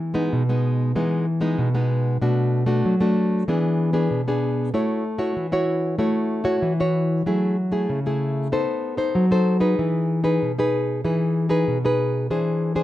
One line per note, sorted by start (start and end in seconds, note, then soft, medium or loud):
0.00 0.29 E3 medium
0.14 0.42 G#3 medium
0.14 0.42 B3 medium
0.14 0.42 D#4 medium
0.33 0.93 B2 medium
0.49 0.91 G#3 medium
0.49 0.91 B3 medium
0.49 0.91 D#4 medium
0.95 1.55 E3 medium
0.95 1.25 G#3 medium
0.95 1.25 B3 medium
0.95 1.25 D#4 medium
1.41 1.68 G#3 medium
1.41 1.68 B3 medium
1.41 1.69 D#4 medium
1.58 2.18 B2 medium
1.74 2.17 G#3 medium
1.74 2.17 B3 medium
1.74 2.17 D#4 medium
2.21 2.81 B2 medium
2.21 2.64 A3 medium
2.21 2.64 D4 medium
2.21 2.64 F#4 medium
2.66 2.94 A3 medium
2.66 2.94 D4 medium
2.66 2.95 F#4 medium
2.85 3.45 F#3 medium
3.01 3.43 A3 medium
3.01 3.43 D4 medium
3.01 3.43 F#4 medium
3.48 4.08 E3 medium
3.48 3.90 B3 medium
3.48 3.90 D4 medium
3.48 3.90 G#4 medium
3.93 4.20 B3 medium
3.93 4.21 D4 medium
3.93 4.21 G#4 medium
4.11 4.70 B2 medium
4.28 4.69 B3 medium
4.28 4.69 D4 medium
4.28 4.70 G#4 medium
4.74 5.33 A3 medium
4.74 5.03 E4 medium
4.74 5.03 F#4 medium
4.74 5.04 C#5 medium
5.18 5.46 E4 medium
5.18 5.46 F#4 medium
5.18 5.46 C#5 medium
5.37 5.96 E3 medium
5.52 5.94 E4 medium
5.52 5.95 F#4 medium
5.52 5.95 C#5 medium
5.99 6.59 A3 medium
5.99 6.41 E4 medium
5.99 6.42 F#4 soft
5.99 6.42 C#5 medium
6.44 6.72 E4 medium
6.44 6.72 F#4 medium
6.44 6.72 C#5 medium
6.62 7.22 E3 medium
6.80 7.21 E4 medium
6.80 7.22 F#4 medium
6.80 7.22 C#5 medium
7.26 7.86 F#3 medium
7.26 7.56 A3 medium
7.26 7.56 E4 medium
7.26 7.56 G#4 medium
7.72 7.99 A3 medium
7.72 7.99 E4 medium
7.72 7.99 G#4 medium
7.89 8.49 C#3 medium
8.06 8.48 A3 medium
8.06 8.48 E4 medium
8.06 8.48 G#4 medium
8.52 9.12 B3 medium
8.52 8.94 D#4 medium
8.52 8.94 A4 medium
8.52 8.95 C5 medium
8.97 9.25 D#4 medium
8.97 9.25 A4 medium
8.97 9.25 C5 medium
9.15 9.75 F#3 medium
9.31 9.57 D#4 medium
9.31 9.58 A4 medium
9.31 9.58 C5 medium
9.60 10.19 D#4 medium
9.60 10.19 G#4 medium
9.60 10.20 B4 medium
9.79 10.38 E3 medium
10.24 10.51 D#4 medium
10.24 10.51 G#4 medium
10.24 10.51 B4 medium
10.42 11.02 B2 medium
10.59 11.00 D#4 medium
10.59 11.00 G#4 medium
10.59 11.00 B4 medium
11.04 11.64 E3 medium
11.04 11.46 D#4 medium
11.04 11.47 G#4 medium
11.04 11.47 B4 medium
11.49 11.77 D#4 medium
11.49 11.77 G#4 medium
11.49 11.77 B4 medium
11.68 12.27 B2 medium
11.85 12.26 D#4 medium
11.85 12.26 G#4 medium
11.85 12.27 B4 medium
12.30 12.83 E3 medium
12.30 12.73 D4 medium
12.30 12.73 G#4 medium
12.30 12.73 C5 medium
12.75 12.83 D4 medium
12.75 12.83 G#4 medium
12.75 12.83 C5 medium